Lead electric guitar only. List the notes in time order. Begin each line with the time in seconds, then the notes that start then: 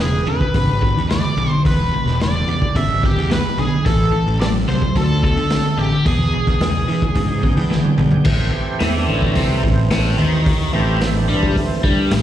0.01 G#4
0.28 B4
1.10 D5
1.50 C5
1.66 B4
2.22 D5
2.76 E5
3.05 G4
3.32 B4
3.60 G#4
3.86 A4
4.40 D5
4.68 C5
4.96 A4
5.24 A4
5.79 G4
6.07 G#4